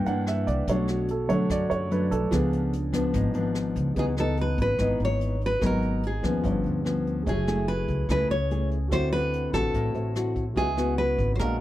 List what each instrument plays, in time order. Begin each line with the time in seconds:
Already playing: nylon-string guitar G2, grand piano E3 A#3 D4 G5
0.06 upright bass G2, nylon-string guitar E3 A#3 D4, grand piano F#5, closed hi-hat
0.27 grand piano E5, cross-stick, closed hi-hat
0.47 upright bass C2, grand piano D5, kick, closed hi-hat
0.67 upright bass B1, nylon-string guitar B2 F#3 A3 D4, grand piano C#5, kick, closed hi-hat
0.88 grand piano F#4, cross-stick, closed hi-hat
1.08 grand piano A4, closed hi-hat
1.27 grand piano D3 A3 C#5, nylon-string guitar F#3 A3 D4, kick, closed hi-hat
1.50 nylon-string guitar F#2, upright bass F#2, grand piano D5, kick, cross-stick, closed hi-hat
1.70 upright bass F#2, grand piano C#5, closed hi-hat
1.91 nylon-string guitar F#3 A3 D4, grand piano B4, closed hi-hat
2.11 upright bass B1, grand piano A4, kick, closed hi-hat
2.31 upright bass C#2, nylon-string guitar C#3 F3 B3 D4, grand piano F3 B3 D4 G#4, kick, cross-stick, closed hi-hat
2.53 closed hi-hat
2.73 closed hi-hat
2.93 nylon-string guitar F3 B3 D4, kick, cross-stick, closed hi-hat
3.14 upright bass G#1, nylon-string guitar G#2, kick, closed hi-hat
3.34 upright bass G#1, nylon-string guitar F3 B3 D4, closed hi-hat
3.55 cross-stick, closed hi-hat
3.76 upright bass C#2, kick, closed hi-hat
3.95 upright bass C#2, nylon-string guitar C#3 E3 B3 D#4, grand piano G#4 B4 D#5, kick, closed hi-hat
3.99 nylon-string guitar G#4
4.17 nylon-string guitar E3 B3 D#4 A4, cross-stick, closed hi-hat
4.37 closed hi-hat
4.41 nylon-string guitar B4
4.58 upright bass G#1, kick, closed hi-hat
4.62 nylon-string guitar B4
4.78 upright bass G#1, nylon-string guitar G#2 E3 B3 D#4, kick, cross-stick, closed hi-hat
5.00 upright bass G#1, closed hi-hat
5.05 nylon-string guitar C#5
5.21 closed hi-hat
5.41 closed hi-hat
5.46 nylon-string guitar B4
5.59 upright bass G#1, nylon-string guitar G#2 F#3 B3 D#4, grand piano F#4 A#4, kick, cross-stick, closed hi-hat
5.63 grand piano B3 D#5, nylon-string guitar A#4
5.82 closed hi-hat
6.03 nylon-string guitar G#4, closed hi-hat
6.23 upright bass D#2, nylon-string guitar F3 B3 C#4, kick, cross-stick, closed hi-hat
6.42 upright bass G1, nylon-string guitar G2, grand piano F4 B4 C#5, kick, closed hi-hat
6.47 grand piano D4
6.64 upright bass D2, closed hi-hat
6.85 nylon-string guitar F3 B3 C#4, cross-stick, closed hi-hat
7.07 closed hi-hat
7.23 nylon-string guitar F#3, grand piano A3 G#4
7.27 upright bass F#1, nylon-string guitar A3 E4 G#4, grand piano C#5 E5, kick, closed hi-hat
7.47 nylon-string guitar A3 E4 G#4, cross-stick, closed hi-hat
7.68 nylon-string guitar B4, closed hi-hat
7.88 upright bass C#2, kick, closed hi-hat
8.09 upright bass C#2, nylon-string guitar C#3 A3 E4 G#4 B4, kick, cross-stick, closed hi-hat
8.30 upright bass C#2, nylon-string guitar C#5, closed hi-hat
8.50 nylon-string guitar A3 E4 G#4, closed hi-hat
8.71 closed hi-hat
8.88 upright bass D2, nylon-string guitar D3 C4 E4, grand piano C4 F#4 A4, kick, cross-stick, closed hi-hat
8.92 nylon-string guitar F#4 C5, grand piano E5
9.13 nylon-string guitar B4, closed hi-hat
9.33 closed hi-hat
9.53 upright bass A1, nylon-string guitar C4 E4 F#4 A4, kick, cross-stick, closed hi-hat
9.74 upright bass A1, nylon-string guitar A2, kick, closed hi-hat
9.93 upright bass A1, grand piano F#4 A4 C5 E5, closed hi-hat
10.15 nylon-string guitar C4 E4 F#4, cross-stick, closed hi-hat
10.36 kick, closed hi-hat
10.54 upright bass C#2, nylon-string guitar C#3 B3 E4 F#4 G#4, grand piano F#4 B4 D#5, kick, closed hi-hat
10.59 grand piano E5
10.77 nylon-string guitar B3 E4 F#4, cross-stick, closed hi-hat
10.98 nylon-string guitar B4, closed hi-hat
11.18 upright bass G#1, kick, closed hi-hat
11.35 upright bass A#1, grand piano F#4 G#4 D5, nylon-string guitar C5, kick, cross-stick, closed hi-hat
11.39 nylon-string guitar A#2 G#3 D4 F#4 A#4, grand piano F5